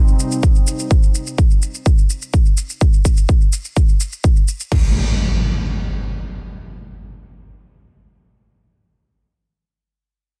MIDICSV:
0, 0, Header, 1, 4, 480
1, 0, Start_track
1, 0, Key_signature, -3, "minor"
1, 0, Tempo, 476190
1, 914, Time_signature, 4, 2, 24, 8
1, 10483, End_track
2, 0, Start_track
2, 0, Title_t, "Analog synth pad"
2, 0, Program_c, 0, 89
2, 0, Note_on_c, 0, 48, 85
2, 0, Note_on_c, 0, 55, 71
2, 0, Note_on_c, 0, 60, 75
2, 0, Note_on_c, 0, 63, 93
2, 877, Note_off_c, 0, 48, 0
2, 877, Note_off_c, 0, 55, 0
2, 877, Note_off_c, 0, 63, 0
2, 896, Note_off_c, 0, 60, 0
2, 10483, End_track
3, 0, Start_track
3, 0, Title_t, "Impact"
3, 0, Program_c, 1, 103
3, 4754, Note_on_c, 1, 60, 61
3, 8515, Note_off_c, 1, 60, 0
3, 10483, End_track
4, 0, Start_track
4, 0, Title_t, "Drums"
4, 79, Note_on_c, 9, 82, 22
4, 180, Note_off_c, 9, 82, 0
4, 197, Note_on_c, 9, 82, 78
4, 298, Note_off_c, 9, 82, 0
4, 319, Note_on_c, 9, 82, 34
4, 420, Note_off_c, 9, 82, 0
4, 435, Note_on_c, 9, 36, 112
4, 437, Note_on_c, 9, 82, 48
4, 536, Note_off_c, 9, 36, 0
4, 538, Note_off_c, 9, 82, 0
4, 560, Note_on_c, 9, 82, 23
4, 660, Note_off_c, 9, 82, 0
4, 677, Note_on_c, 9, 82, 80
4, 778, Note_off_c, 9, 82, 0
4, 800, Note_on_c, 9, 82, 34
4, 900, Note_off_c, 9, 82, 0
4, 915, Note_on_c, 9, 36, 107
4, 917, Note_on_c, 9, 82, 47
4, 1016, Note_off_c, 9, 36, 0
4, 1017, Note_off_c, 9, 82, 0
4, 1039, Note_on_c, 9, 82, 22
4, 1140, Note_off_c, 9, 82, 0
4, 1156, Note_on_c, 9, 82, 77
4, 1257, Note_off_c, 9, 82, 0
4, 1279, Note_on_c, 9, 82, 35
4, 1379, Note_off_c, 9, 82, 0
4, 1395, Note_on_c, 9, 36, 114
4, 1396, Note_on_c, 9, 82, 45
4, 1495, Note_off_c, 9, 36, 0
4, 1497, Note_off_c, 9, 82, 0
4, 1518, Note_on_c, 9, 82, 22
4, 1619, Note_off_c, 9, 82, 0
4, 1636, Note_on_c, 9, 82, 79
4, 1737, Note_off_c, 9, 82, 0
4, 1759, Note_on_c, 9, 82, 32
4, 1860, Note_off_c, 9, 82, 0
4, 1874, Note_on_c, 9, 36, 107
4, 1876, Note_on_c, 9, 82, 44
4, 1975, Note_off_c, 9, 36, 0
4, 1977, Note_off_c, 9, 82, 0
4, 1997, Note_on_c, 9, 82, 22
4, 2098, Note_off_c, 9, 82, 0
4, 2116, Note_on_c, 9, 82, 77
4, 2217, Note_off_c, 9, 82, 0
4, 2237, Note_on_c, 9, 82, 34
4, 2338, Note_off_c, 9, 82, 0
4, 2355, Note_on_c, 9, 36, 113
4, 2355, Note_on_c, 9, 82, 47
4, 2455, Note_off_c, 9, 36, 0
4, 2456, Note_off_c, 9, 82, 0
4, 2477, Note_on_c, 9, 82, 23
4, 2578, Note_off_c, 9, 82, 0
4, 2595, Note_on_c, 9, 82, 76
4, 2696, Note_off_c, 9, 82, 0
4, 2717, Note_on_c, 9, 82, 34
4, 2817, Note_off_c, 9, 82, 0
4, 2835, Note_on_c, 9, 36, 107
4, 2835, Note_on_c, 9, 82, 42
4, 2936, Note_off_c, 9, 36, 0
4, 2936, Note_off_c, 9, 82, 0
4, 2957, Note_on_c, 9, 82, 22
4, 3058, Note_off_c, 9, 82, 0
4, 3075, Note_on_c, 9, 36, 56
4, 3075, Note_on_c, 9, 82, 77
4, 3176, Note_off_c, 9, 36, 0
4, 3176, Note_off_c, 9, 82, 0
4, 3198, Note_on_c, 9, 82, 33
4, 3298, Note_off_c, 9, 82, 0
4, 3315, Note_on_c, 9, 36, 111
4, 3316, Note_on_c, 9, 82, 45
4, 3416, Note_off_c, 9, 36, 0
4, 3416, Note_off_c, 9, 82, 0
4, 3438, Note_on_c, 9, 82, 21
4, 3539, Note_off_c, 9, 82, 0
4, 3556, Note_on_c, 9, 82, 76
4, 3657, Note_off_c, 9, 82, 0
4, 3678, Note_on_c, 9, 82, 30
4, 3779, Note_off_c, 9, 82, 0
4, 3795, Note_on_c, 9, 36, 109
4, 3797, Note_on_c, 9, 82, 45
4, 3896, Note_off_c, 9, 36, 0
4, 3898, Note_off_c, 9, 82, 0
4, 3919, Note_on_c, 9, 82, 22
4, 4020, Note_off_c, 9, 82, 0
4, 4036, Note_on_c, 9, 82, 79
4, 4137, Note_off_c, 9, 82, 0
4, 4158, Note_on_c, 9, 82, 32
4, 4259, Note_off_c, 9, 82, 0
4, 4275, Note_on_c, 9, 36, 109
4, 4276, Note_on_c, 9, 82, 47
4, 4375, Note_off_c, 9, 36, 0
4, 4377, Note_off_c, 9, 82, 0
4, 4398, Note_on_c, 9, 82, 22
4, 4499, Note_off_c, 9, 82, 0
4, 4516, Note_on_c, 9, 82, 75
4, 4617, Note_off_c, 9, 82, 0
4, 4638, Note_on_c, 9, 82, 33
4, 4739, Note_off_c, 9, 82, 0
4, 4754, Note_on_c, 9, 36, 105
4, 4755, Note_on_c, 9, 49, 80
4, 4855, Note_off_c, 9, 36, 0
4, 4855, Note_off_c, 9, 49, 0
4, 10483, End_track
0, 0, End_of_file